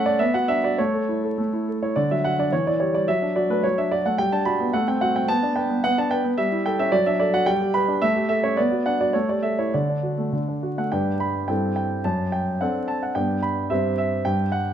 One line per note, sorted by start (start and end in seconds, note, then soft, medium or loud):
0.00 0.18 A3 medium
0.00 0.14 C#4 soft
0.00 0.06 A4 soft
0.00 0.19 E5 medium
0.00 0.22 F#5 medium
0.06 0.20 A4 soft
0.06 0.20 D5 medium
0.19 0.77 B3 medium
0.19 0.34 E5 medium
0.34 0.58 F#4 soft
0.34 0.49 F#5 medium
0.48 0.73 D4 soft
0.48 0.63 E5 medium
0.64 0.79 F#4 soft
0.64 0.79 D5 medium
0.78 1.36 A3 medium
0.78 1.68 C#5 medium
0.94 1.18 A4 soft
1.09 1.33 E4 soft
1.23 1.47 A4 soft
1.38 1.95 A3 soft
1.53 1.77 E4 soft
1.68 1.91 A4 soft
1.82 1.97 E4 soft
1.82 1.97 C#5 soft
1.96 2.50 D3 soft
1.96 2.10 D5 medium
2.11 2.33 F#3 soft
2.11 2.25 E5 medium
2.24 2.47 F#4 soft
2.24 2.38 F#5 medium
2.39 2.53 D4 soft
2.39 2.53 D5 medium
2.53 3.07 E3 soft
2.53 2.66 C#5 medium
2.67 2.89 E4 soft
2.67 2.81 D5 medium
2.80 3.03 G4 soft
2.80 2.94 C#5 medium
2.94 3.08 G3 soft
2.94 3.08 D5 medium
3.08 3.63 F#3 soft
3.08 3.36 E5 medium
3.22 3.44 D4 soft
3.36 3.58 F#4 soft
3.36 3.50 D5 medium
3.50 3.72 A3 soft
3.50 3.64 B4 medium
3.64 4.18 F#3 soft
3.64 3.78 C#5 medium
3.78 4.00 D4 soft
3.78 3.92 E5 medium
3.91 4.14 F#4 soft
3.91 4.05 D5 medium
4.06 4.19 A3 soft
4.06 4.19 F#5 medium
4.18 4.72 G3 soft
4.18 4.32 G5 medium
4.32 4.55 D4 soft
4.32 4.46 A5 medium
4.45 4.68 F#4 soft
4.45 4.73 B5 medium
4.60 4.74 B3 soft
4.73 5.27 A3 medium
4.73 4.87 F#5 medium
4.88 5.10 C4 soft
4.88 5.02 G5 medium
5.01 5.24 F#4 soft
5.01 5.15 F#5 medium
5.16 5.29 C4 soft
5.16 5.29 G5 medium
5.28 5.68 B3 medium
5.28 5.56 A5 medium
5.43 5.65 D4 soft
5.56 5.78 B4 soft
5.56 5.83 G5 medium
5.70 5.83 B3 soft
5.84 6.23 B3 soft
5.84 5.97 F#5 medium
5.98 6.19 D4 soft
5.98 6.11 A5 medium
6.11 6.33 B4 soft
6.11 6.24 G5 medium
6.25 6.38 B3 soft
6.38 6.91 G3 medium
6.38 6.65 E5 medium
6.52 6.73 E4 soft
6.66 6.87 A4 soft
6.66 6.79 G5 medium
6.79 6.93 C#4 soft
6.79 6.93 E5 medium
6.92 7.45 F#3 medium
6.92 7.06 D5 medium
7.06 7.28 D4 soft
7.06 7.20 E5 medium
7.20 7.42 A4 soft
7.20 7.33 D5 medium
7.34 7.47 F#4 soft
7.34 7.47 F#5 medium
7.46 8.00 G3 medium
7.46 7.74 G5 medium
7.61 7.83 G4 soft
7.74 7.96 B4 soft
7.74 8.02 B5 medium
7.88 8.02 D4 soft
8.02 8.56 A3 medium
8.02 8.27 E5 medium
8.16 8.38 G4 soft
8.29 8.51 A4 soft
8.29 8.43 E5 medium
8.44 8.57 C#4 soft
8.44 8.57 C#5 medium
8.57 9.12 B3 medium
8.57 8.85 D5 medium
8.71 8.94 F#4 soft
8.86 9.09 D4 soft
8.86 9.00 F#5 medium
9.01 9.14 F#4 soft
9.01 9.14 D5 medium
9.13 9.71 A3 soft
9.13 9.28 C#5 medium
9.29 9.52 G4 soft
9.29 9.43 D5 medium
9.43 9.67 A4 soft
9.43 9.58 E5 medium
9.59 9.73 E4 soft
9.59 9.73 C#5 soft
9.74 10.31 D3 soft
9.74 10.33 D5 soft
9.89 10.12 D4 soft
10.03 10.27 F#4 soft
10.18 10.42 A3 soft
10.33 10.90 D3 soft
10.48 10.72 D4 soft
10.63 10.86 F#4 soft
10.78 10.92 A3 soft
10.78 10.92 F#5 soft
10.92 11.46 G2 soft
10.92 11.44 D4 soft
10.92 11.44 G4 soft
10.92 11.45 B4 soft
10.92 11.20 G5 medium
11.20 11.48 B5 medium
11.48 12.03 G2 soft
11.48 12.00 C4 soft
11.48 12.01 E4 soft
11.48 12.01 A4 soft
11.48 11.74 G5 medium
11.76 12.04 G5 medium
12.04 12.59 F#2 soft
12.04 12.32 A5 medium
12.32 12.60 G5 medium
12.61 13.12 C4 soft
12.61 13.12 D4 soft
12.61 13.13 A4 soft
12.61 12.88 F#5 medium
12.88 13.02 A5 medium
13.03 13.16 F#5 medium
13.15 13.69 G2 soft
13.15 13.66 B3 soft
13.15 13.67 D4 soft
13.15 13.67 B4 soft
13.15 13.43 G5 medium
13.43 13.70 B5 medium
13.70 14.23 G2 soft
13.70 14.21 G3 soft
13.70 14.21 C4 soft
13.70 14.21 C5 soft
13.70 13.97 E5 medium
13.98 14.25 E5 medium
14.25 14.73 G2 medium
14.25 14.52 G5 medium
14.52 14.73 F#5 medium